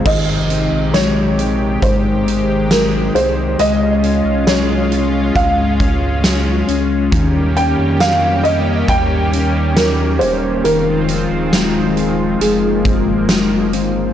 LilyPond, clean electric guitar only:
\new Staff \with { instrumentName = "Clean electric guitar" } { \time 4/4 \key aes \major \tempo 4 = 68 ees8 c'8 aes8 g'8 aes8 c'8 aes8 c'8 | aes8 des'8 aes8 f'8 aes8 des'8 aes8 des'8 | ees8 des'8 bes8 g'8 bes8 des'8 bes8 des'8 | ees8 c'8 aes8 aes'8 aes8 c'8 aes8 c'8 | }